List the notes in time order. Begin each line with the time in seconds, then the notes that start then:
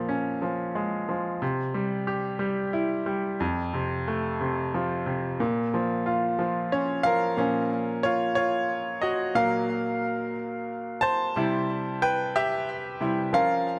Already playing: A#2 F3
0.09 C#4
0.42 F3
0.75 G#3
1.09 F3
1.42 C3
1.74 G3
2.07 G4
2.39 G3
2.73 E4
3.06 G3
3.40 F2
3.74 C3
4.08 A3
4.41 C3
4.74 F3
5.06 C3
5.40 A#2
5.74 F3
6.06 F4
6.39 F3
6.72 C#4 C#5
7.03 F3 A#4 F5
7.37 A#2 F3 C#4
8.03 F4 C#5
8.35 F4 C#5
9.02 F#4 D#5
9.35 A#2 F#3 A#3 A#4 F5
11.01 C5 A5
11.36 C3 G3 E4
12.02 B4 G5
12.36 G4 E5
13.00 C3 G3 E4
13.33 F3 C#4 F4 A#4 F5